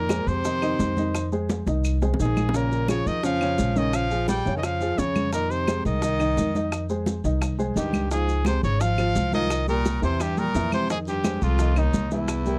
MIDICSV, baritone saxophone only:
0, 0, Header, 1, 2, 480
1, 0, Start_track
1, 0, Key_signature, -4, "minor"
1, 0, Tempo, 348230
1, 1580, Time_signature, 4, 2, 24, 8
1, 17351, End_track
2, 0, Start_track
2, 0, Title_t, "Baritone saxophone"
2, 0, Program_c, 0, 67
2, 0, Note_on_c, 0, 46, 75
2, 381, Note_on_c, 0, 48, 74
2, 402, Note_off_c, 0, 46, 0
2, 1822, Note_off_c, 0, 48, 0
2, 3025, Note_on_c, 0, 44, 62
2, 3513, Note_on_c, 0, 46, 64
2, 3534, Note_off_c, 0, 44, 0
2, 3971, Note_off_c, 0, 46, 0
2, 3980, Note_on_c, 0, 49, 76
2, 4213, Note_on_c, 0, 51, 74
2, 4234, Note_off_c, 0, 49, 0
2, 4446, Note_off_c, 0, 51, 0
2, 4454, Note_on_c, 0, 53, 80
2, 5193, Note_on_c, 0, 51, 79
2, 5214, Note_off_c, 0, 53, 0
2, 5430, Note_on_c, 0, 53, 83
2, 5451, Note_off_c, 0, 51, 0
2, 5894, Note_off_c, 0, 53, 0
2, 5903, Note_on_c, 0, 55, 88
2, 6260, Note_off_c, 0, 55, 0
2, 6281, Note_on_c, 0, 51, 53
2, 6369, Note_on_c, 0, 53, 78
2, 6390, Note_off_c, 0, 51, 0
2, 6858, Note_on_c, 0, 49, 69
2, 6879, Note_off_c, 0, 53, 0
2, 7335, Note_off_c, 0, 49, 0
2, 7344, Note_on_c, 0, 46, 68
2, 7584, Note_on_c, 0, 48, 73
2, 7605, Note_off_c, 0, 46, 0
2, 8057, Note_off_c, 0, 48, 0
2, 8065, Note_on_c, 0, 51, 87
2, 9449, Note_off_c, 0, 51, 0
2, 10709, Note_on_c, 0, 43, 67
2, 11152, Note_off_c, 0, 43, 0
2, 11179, Note_on_c, 0, 44, 79
2, 11626, Note_off_c, 0, 44, 0
2, 11652, Note_on_c, 0, 48, 73
2, 11880, Note_off_c, 0, 48, 0
2, 11909, Note_on_c, 0, 49, 82
2, 12138, Note_on_c, 0, 53, 86
2, 12159, Note_off_c, 0, 49, 0
2, 12855, Note_off_c, 0, 53, 0
2, 12863, Note_on_c, 0, 51, 89
2, 13308, Note_off_c, 0, 51, 0
2, 13342, Note_on_c, 0, 46, 82
2, 13788, Note_off_c, 0, 46, 0
2, 13819, Note_on_c, 0, 48, 88
2, 14065, Note_on_c, 0, 43, 76
2, 14085, Note_off_c, 0, 48, 0
2, 14312, Note_on_c, 0, 46, 88
2, 14333, Note_off_c, 0, 43, 0
2, 14779, Note_off_c, 0, 46, 0
2, 14787, Note_on_c, 0, 48, 83
2, 15006, Note_off_c, 0, 48, 0
2, 15017, Note_on_c, 0, 44, 80
2, 15126, Note_off_c, 0, 44, 0
2, 15262, Note_on_c, 0, 43, 78
2, 15735, Note_on_c, 0, 41, 82
2, 15756, Note_off_c, 0, 43, 0
2, 16208, Note_on_c, 0, 39, 76
2, 16229, Note_off_c, 0, 41, 0
2, 16693, Note_off_c, 0, 39, 0
2, 16699, Note_on_c, 0, 40, 77
2, 17351, Note_off_c, 0, 40, 0
2, 17351, End_track
0, 0, End_of_file